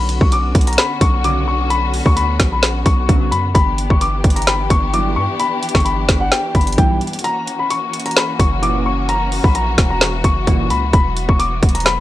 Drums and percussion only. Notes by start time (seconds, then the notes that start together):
0.09 closed hi-hat
0.21 kick
0.32 closed hi-hat
0.55 kick, closed hi-hat
0.61 closed hi-hat
0.67 closed hi-hat
0.73 closed hi-hat
0.78 snare, closed hi-hat
1.01 kick, closed hi-hat
1.24 closed hi-hat
1.70 closed hi-hat
1.94 open hi-hat
2.06 kick
2.17 closed hi-hat
2.40 kick, snare, closed hi-hat
2.63 snare, closed hi-hat
2.86 kick, closed hi-hat
3.09 kick, closed hi-hat
3.32 closed hi-hat
3.55 kick, closed hi-hat
3.78 closed hi-hat
3.90 kick
4.01 closed hi-hat
4.24 kick, closed hi-hat
4.30 closed hi-hat
4.36 closed hi-hat
4.42 closed hi-hat
4.47 snare, closed hi-hat
4.70 kick, closed hi-hat
4.94 closed hi-hat
5.40 closed hi-hat
5.63 closed hi-hat
5.69 closed hi-hat
5.75 kick, snare, closed hi-hat
5.80 closed hi-hat
5.86 closed hi-hat
6.09 kick, snare, closed hi-hat
6.32 snare, closed hi-hat
6.55 kick, closed hi-hat
6.61 closed hi-hat
6.67 closed hi-hat
6.73 closed hi-hat
6.78 kick, closed hi-hat
7.01 closed hi-hat
7.07 closed hi-hat
7.13 closed hi-hat
7.19 closed hi-hat
7.24 closed hi-hat
7.47 closed hi-hat
7.70 closed hi-hat
7.93 closed hi-hat
8.00 closed hi-hat
8.06 closed hi-hat
8.11 closed hi-hat
8.17 snare, closed hi-hat
8.40 kick, closed hi-hat
8.63 closed hi-hat
9.09 closed hi-hat
9.32 open hi-hat
9.44 kick
9.55 closed hi-hat
9.78 kick, snare, closed hi-hat
10.01 snare, closed hi-hat
10.24 kick, closed hi-hat
10.47 kick, closed hi-hat
10.70 closed hi-hat
10.93 kick, closed hi-hat
11.17 closed hi-hat
11.29 kick
11.40 closed hi-hat
11.63 kick, closed hi-hat
11.69 closed hi-hat
11.75 closed hi-hat
11.80 closed hi-hat
11.86 snare, closed hi-hat